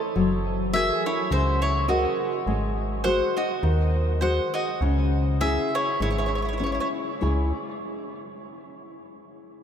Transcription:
0.16 0.91 F#1 medium
0.16 0.72 F#3 medium
0.73 1.20 F#4 soft
0.73 1.20 G#4 soft
0.73 1.04 G#4 medium
0.73 1.20 A#4 medium
0.73 1.03 E5 loud
1.06 1.30 E4 medium
1.06 1.30 C#5 medium
1.30 2.06 C#2 medium
1.30 1.87 C#3 medium
1.30 1.61 F#4 medium
1.30 1.61 C5 medium
1.62 1.87 E4 medium
1.62 1.87 C#5 medium
1.88 2.35 F#4 soft
1.88 2.31 F#4 medium
1.88 2.35 G#4 soft
1.88 2.35 A#4 medium
1.88 2.30 D#5 medium
2.46 3.23 G#1 medium
2.46 3.04 G#3 medium
3.04 3.52 F#4 medium
3.04 3.52 G#4 medium
3.04 3.34 C5 medium
3.04 3.52 C5 medium
3.04 3.34 F#5 medium
3.37 3.62 F#4 medium
3.37 3.62 D#5 medium
3.63 4.40 D#2 medium
3.63 4.20 D#3 medium
4.21 4.69 F#4 soft
4.21 4.69 G#4 soft
4.21 4.52 C5 medium
4.21 4.70 C5 medium
4.21 4.55 F#5 loud
4.54 4.80 F#4 medium
4.54 4.79 D#5 medium
4.81 5.58 C#2 medium
4.81 5.39 C#3 medium
5.41 5.88 C#4 soft
5.41 5.89 E4 soft
5.41 5.71 G#4 medium
5.41 5.89 G#4 medium
5.41 5.74 E5 loud
5.75 5.99 E4 medium
5.75 5.99 C#5 medium
6.00 6.80 G#1 medium
6.00 6.59 G#3 medium
6.00 6.09 E4 medium
6.00 6.09 C#5 medium
6.11 6.18 E4 soft
6.11 6.17 C#5 soft
6.18 6.26 E4 soft
6.18 6.25 C#5 medium
6.26 6.34 E4 soft
6.26 6.33 C#5 soft
6.35 6.42 E4 soft
6.35 6.41 C#5 soft
6.42 6.49 E4 soft
6.42 6.47 C#5 soft
6.49 6.54 C#5 soft
6.53 6.57 E4 soft
6.58 7.09 C#4 soft
6.58 6.64 E4 soft
6.58 7.10 E4 soft
6.58 7.10 G#4 soft
6.58 6.62 C#5 soft
6.64 6.72 E4 soft
6.64 6.70 C#5 soft
6.72 6.80 E4 soft
6.72 6.79 C#5 soft
6.80 6.88 E4 medium
6.80 6.87 C#5 medium
7.21 7.53 C#2 medium
7.21 7.52 C#3 soft
7.21 7.51 G#3 soft
7.21 7.51 E4 soft
7.21 7.52 C#5 medium
7.21 7.52 G#5 soft

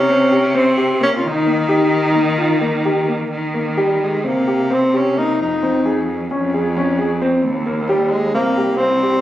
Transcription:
0.00 1.24 C3 medium
0.00 0.58 C#4 loud
0.09 0.27 C4 medium
0.32 0.50 G4 medium
0.55 0.73 C4 medium
0.55 1.01 C4 medium
0.77 0.95 G4 medium
1.01 1.19 A#3 medium
1.01 1.09 C#4 medium
1.17 1.29 F4 medium
1.23 3.28 D#3 medium
1.27 2.87 D#4 medium
1.46 1.65 A#3 medium
1.69 2.05 G4 medium
2.15 2.33 A#3 medium
2.38 2.57 F4 medium
2.61 2.80 A#3 medium
2.85 3.04 G4 medium
3.08 3.27 A#3 medium
3.32 4.26 D#3 medium
3.54 3.73 A#3 medium
3.77 4.00 G3 medium
3.77 4.14 G4 medium
4.03 4.28 G#3 medium
4.24 5.41 C3 medium
4.24 4.75 A#3 medium
4.24 4.42 C4 medium
4.48 4.66 G4 medium
4.70 4.88 C4 medium
4.70 4.97 C4 medium
4.94 5.20 C#4 medium
4.94 5.12 G4 medium
5.17 5.34 A#3 medium
5.17 5.40 D#4 medium
5.39 6.30 F2 medium
5.39 6.05 D#4 medium
5.63 5.80 C4 medium
5.86 6.21 G#4 medium
6.30 7.45 F2 medium
6.30 6.49 C#4 medium
6.54 6.72 G#4 medium
6.77 6.94 C#4 medium
6.99 7.16 G#4 medium
7.22 7.39 C4 medium
7.44 8.36 D#2 medium
7.66 7.84 A#3 medium
7.89 8.11 G3 medium
7.89 8.25 G4 medium
8.10 8.33 G#3 medium
8.34 9.21 C2 medium
8.34 8.79 A#3 medium
8.34 8.52 C4 medium
8.57 8.75 G4 medium
8.77 9.21 C4 loud
8.77 8.98 C4 medium
9.03 9.21 G4 medium

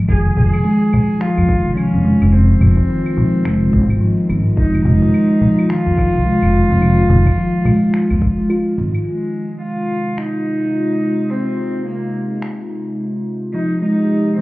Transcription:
0.08 0.30 F1 medium
0.08 0.18 D#3 medium
0.08 9.02 D#3 medium
0.08 9.02 G#3 medium
0.08 9.02 D#4 medium
0.08 9.02 F4 medium
0.08 0.35 G#4 loud
0.08 kick loud
0.08 claves medium
0.08 shaker soft
0.37 0.48 F1 medium
0.37 0.52 F3 medium
0.37 1.22 G#4 loud
0.37 cajon bass medium
0.37 shaker medium
0.53 cajon slap medium
0.53 claves medium
0.53 shaker soft
0.64 0.80 G#3 medium
0.64 shaker soft
0.93 cajon bass medium
0.93 claves medium
0.93 shaker medium
1.10 shaker soft
1.21 1.36 F3 medium
1.21 1.76 F4 loud
1.21 finger snap medium
1.21 shaker soft
1.37 1.45 F2 medium
1.37 claves medium
1.48 1.58 D#3 medium
1.48 kick loud
1.48 cajon slap medium
1.48 shaker medium
1.65 1.73 C2 medium
1.65 shaker soft
1.77 1.92 F3 medium
1.77 2.34 C#4 loud
1.77 claves medium
1.77 shaker soft
1.93 2.11 F1 medium
2.05 2.20 G#3 medium
2.05 cajon slap soft
2.05 shaker medium
2.21 2.55 F1 loud
2.21 claves medium
2.21 shaker soft
2.33 4.29 C4 medium
2.33 shaker soft
2.61 2.72 F1 loud
2.61 2.77 F3 medium
2.61 cajon bass medium
2.61 claves medium
2.61 shaker medium
2.77 kick medium
2.77 cajon slap medium
2.77 shaker soft
2.89 2.98 D#3 medium
2.89 shaker soft
3.06 claves medium
3.17 3.33 F3 medium
3.17 cajon bass medium
3.17 shaker medium
3.34 shaker soft
3.45 3.72 F1 medium
3.45 3.61 G#3 medium
3.45 finger snap medium
3.45 claves medium
3.45 shaker soft
3.73 3.84 G#1 loud
3.73 kick loud
3.73 cajon slap medium
3.73 shaker medium
3.89 3.98 G#1 medium
3.89 claves medium
3.89 shaker soft
4.01 4.17 F3 medium
4.01 shaker soft
4.29 4.41 G#1 medium
4.29 4.39 D#3 medium
4.29 claves medium
4.29 shaker medium
4.47 shaker soft
4.57 4.78 F1 medium
4.57 4.73 F3 medium
4.57 4.83 D#4 medium
4.57 kick loud
4.57 shaker soft
4.74 claves medium
4.85 4.97 F1 loud
4.85 5.01 G#3 medium
4.85 5.71 D#4 loud
4.85 cajon bass medium
4.85 shaker medium
5.02 cajon slap medium
5.02 shaker soft
5.14 claves medium
5.14 shaker soft
5.41 5.57 F3 medium
5.41 cajon bass medium
5.41 shaker medium
5.59 claves medium
5.59 shaker soft
5.69 5.79 D#3 medium
5.69 8.50 F4 loud
5.69 finger snap medium
5.86 5.94 F2 loud
5.97 6.13 F3 medium
5.97 kick loud
5.97 cajon slap medium
5.97 claves medium
5.97 shaker medium
6.14 6.22 C2 medium
6.14 shaker soft
6.26 6.41 G#3 medium
6.26 shaker soft
6.42 6.60 F1 medium
6.42 claves medium
6.53 cajon slap soft
6.53 shaker medium
6.70 7.04 F1 loud
6.70 shaker soft
6.82 6.97 F3 medium
6.82 claves medium
6.82 shaker soft
7.10 7.21 F1 loud
7.10 7.19 D#3 medium
7.10 cajon bass medium
7.10 shaker medium
7.26 kick medium
7.26 cajon slap medium
7.26 claves medium
7.26 shaker soft
7.38 7.53 F3 medium
7.38 shaker soft
7.65 7.81 G#3 medium
7.65 cajon bass medium
7.65 claves medium
7.65 shaker medium
7.83 shaker soft
7.94 finger snap medium
7.94 shaker soft
8.10 8.18 D#2 medium
8.10 claves medium
8.22 kick medium
8.22 cajon slap medium
8.22 shaker medium
8.38 8.45 G#3 medium
8.38 shaker soft
8.50 8.59 F4 loud
8.50 claves medium
8.50 shaker soft
8.78 8.89 G#1 medium
8.78 8.94 D#3 medium
8.78 shaker medium
8.95 claves medium
8.95 shaker soft
9.05 14.41 C3 medium
9.05 9.58 G#3 medium
9.05 14.41 G#3 medium
9.05 14.41 D#4 medium
9.05 13.50 F4 medium
9.62 10.19 F4 loud
10.18 11.32 D#4 loud
10.18 finger snap medium
11.30 11.86 C4 medium
11.86 12.39 A#3 medium
12.42 finger snap medium
13.54 13.70 F3 medium
13.54 13.80 D#4 loud
13.54 14.41 G4 medium
13.82 13.98 G#3 medium
13.82 14.34 D#4 medium
14.38 14.41 F3 medium
14.38 14.41 C4 loud

